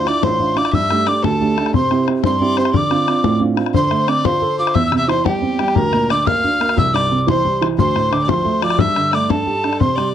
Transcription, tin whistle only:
0.08 D6
0.23 C6
0.58 D6
0.75 E6
1.08 D6
1.24 A5
1.75 C6
2.26 C6
2.60 C6
2.77 D6
3.76 C6
4.09 D6
4.25 C6
4.59 D6
4.75 E6
4.86 E6
4.98 E6
5.09 C6
5.25 G5
5.75 A#5
6.11 D6
6.27 F6
6.78 E6
6.95 D6
7.21 D6
7.29 C6
7.79 C6
8.13 D6
8.29 C6
8.64 D6
8.79 E6
9.15 D6
9.30 A5
9.81 C6

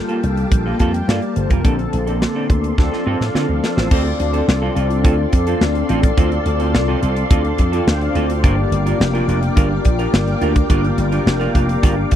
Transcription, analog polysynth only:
Already playing: G3 A#3 F4 A4
0.80 F5 A5
0.93 G5
1.07 D5 F5
1.21 A#4 D5
1.35 A4 C5
1.49 G4 A#4
1.63 D3 A#3 C4 A4
2.77 F3 C4 D4 A4
3.90 C4 D4 F4 A4 D5
7.87 G5
8.02 D5 F5
8.16 D5
8.29 A4 C5
8.43 A#3 D4 F4 G4 D5

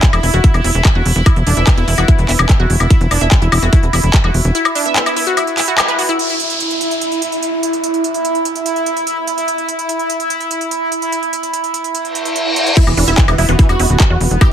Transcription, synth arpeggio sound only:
0.13 E4
0.23 E4
0.34 F#4
0.44 E4
0.64 E4
0.95 F#4
1.26 E4
1.47 D4
1.57 E5
1.77 E4
1.88 E4
1.98 F#4
2.08 E4
2.29 E4
2.60 F#4
2.90 E4
3.11 D4
3.21 E5
3.42 E4
3.52 E4
3.62 F#4
3.73 E4
3.93 E4
4.24 F#4
4.55 E4
4.75 D4
4.86 E5
5.06 E4
5.16 E4
5.27 F#4
5.37 E4
5.58 E4
5.68 F#4
5.88 B4
5.99 F#4
6.09 E4
12.77 E4
12.97 D4
13.08 E5
13.28 E4
13.38 E4
13.49 F#4
13.59 E4
13.80 E4
14.10 F#4
14.41 E4

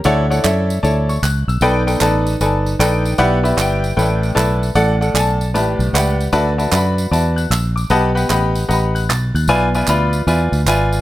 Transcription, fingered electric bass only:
0.05 D2
0.44 F#2
0.83 D2
1.22 C#2
1.48 B1
1.61 B1
2.01 A1
2.40 G1
2.79 A#1
3.18 B1
3.57 G1
3.97 A1
4.36 B1
4.75 A1
5.14 B1
5.53 A1
5.79 B1
5.93 C#2
6.33 D2
6.72 F#2
7.11 E2
7.50 A#1
7.90 B1
8.30 A1
8.69 A1
9.09 B1
9.34 D#2
9.48 B1
9.88 D2
10.27 E2
10.52 D2
10.66 G#1

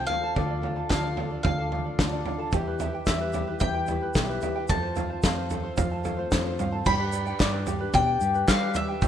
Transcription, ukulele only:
Already playing: C5
0.10 F5
0.24 A5
0.37 A4
0.51 D5
0.64 F5
0.77 A5
0.91 F5
1.04 D5
1.18 A4
1.31 D5
1.45 F5
1.59 A5
1.72 F5
1.86 D5
2.13 D5
2.26 F5
2.39 A5
2.53 G4
2.67 B4
2.81 E5
2.94 G5
3.08 E5
3.21 B4
3.34 G4
3.48 B4
3.61 E5
3.75 G5
3.88 E5
4.02 B4
4.29 B4
4.43 E5
4.55 G5
4.69 A4
4.83 C5
4.96 F5
5.10 A5
5.24 F5
5.37 C5
5.51 A4
5.64 C5
5.78 F5
5.92 A5
6.05 F5
6.19 C5
6.46 C5
6.59 F5
6.72 A5
6.86 G4
7.00 B4
7.13 D5
7.27 G5
7.40 D5
7.53 B4
7.67 G4
7.80 B4
7.94 D5
8.07 G5
8.34 B4
8.48 G4
8.61 B4
8.88 G5
9.02 G4

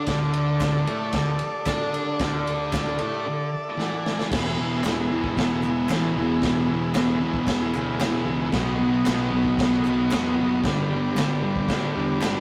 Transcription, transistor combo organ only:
0.07 D4 A4 D5
3.55 E5
3.80 F#5
4.08 G#5
4.33 G#4 B4 E5
8.52 F#4 B4 D#5
10.62 G4 B4 D5

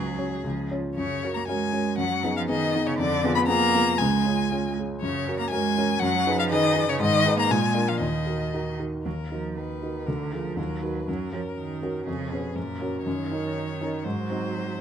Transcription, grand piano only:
Already playing: C#2
0.18 C#4 F#4 C#5
0.44 C#2
0.71 C#4 F4 C#5
0.97 F#2
1.24 C#4 F#4 A#4
1.48 C#4 F#4 A#4
1.72 C#4 F#4 A#4
1.97 F#2
2.24 B3 D#4 G#4
2.49 B3 D#4 G#4
2.74 B3 D#4 G#4
2.99 F2
3.24 B3 F4 G#4
3.48 B3 F4 G#4
3.74 B3 F4 G#4
4.00 C#2
4.26 C#4 F4 G#4
4.51 C#4 F4 G#4
4.78 C#4 F4 G#4
5.02 F#2
5.27 C#4 F#4 A#4
5.52 C#4 F#4 A#4
5.78 C#4 F#4 A#4
6.02 F#2
6.26 D#4 G#4 B4
6.52 D#4 G#4 B4
6.75 D#4 G#4 B4
7.00 G#2
7.25 D#4 G#4 B4
7.50 A#2
7.74 D4 F4 A#4
8.00 D#2
8.26 D#4 F#4 A#4
8.54 D#4 F#4 A#4
8.79 D#4 F#4 A#4
9.05 D#2
9.31 D#4 F#4 A#4
9.82 D#4 F#4 A#4
10.08 D2
10.32 F4 G#4 A#4
10.57 D#2
10.83 D#4 F#4 A#4
11.08 F#2
11.33 C#4 F#4 A#4
11.82 C#4 F#4 A#4
12.07 F2
12.32 C#4 G#4 B4
12.56 F#2
12.81 C#4 F#4 A#4
13.06 F#2
13.31 C#4 D#4 A#4
13.81 C#4 D#4 A#4
14.06 G#2
14.30 C4 D#4 F#4

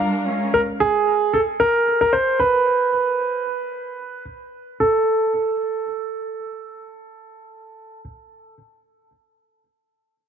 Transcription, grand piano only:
0.54 A#4
0.80 G#4
1.33 A4
1.60 A#4
2.01 A#4
2.13 C5
2.39 B4
4.80 A4

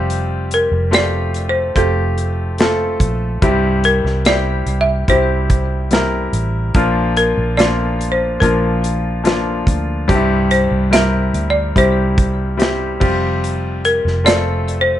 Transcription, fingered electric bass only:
Already playing: F1
0.72 F1
1.75 F1
3.00 A#1
3.42 C2
4.04 C2
4.66 C2
5.08 C2
6.33 A1
6.75 A#1
7.37 A#1
8.41 A#1
9.67 D2
10.09 C2
10.71 C2
11.34 D2
11.75 C2
13.01 F1
14.05 F1

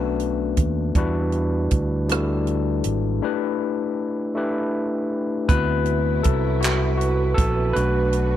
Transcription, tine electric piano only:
Already playing: A3 B3 C#4 D4 F#4 B4
0.96 G3 D4 E4 F#4 B4
2.08 G3 D4 E4 F#4 A4
3.22 A3 D4 E4 G4 B4
4.35 A3 D4 E4 G4 B4
5.49 B3 C4 E4 F#4 B4
6.23 A4
6.61 F#4
6.97 F#4
7.34 A4
7.73 A3 D4 F#4 B4

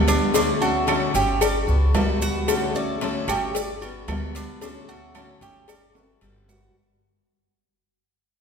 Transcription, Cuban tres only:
0.08 D4
0.35 D4
0.62 F#4
1.16 G4
1.43 D5
2.22 F#4
2.76 D5
3.29 G4
3.56 D5
4.36 D4
4.62 D4
4.89 F#4
5.42 G4
5.69 D5
6.49 F#4

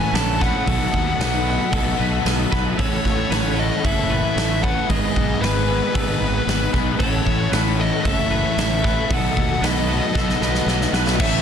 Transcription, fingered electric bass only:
0.12 A#1
0.67 B1
0.93 D#2
1.19 B1
1.72 B1
1.99 B1
2.25 B1
2.52 B1
2.78 A1
3.05 A1
3.32 A1
3.84 F#1
4.36 A1
4.89 G#1
5.16 B1
5.42 G#1
5.95 G#1
6.21 G#1
6.47 G#1
6.74 B1
7.00 A1
7.26 A1
7.52 A1
8.05 F#1
8.57 A1
9.11 B1
9.36 D#2
9.61 B1
10.15 B1
10.41 B1
10.66 B1
10.93 B1
11.19 A1

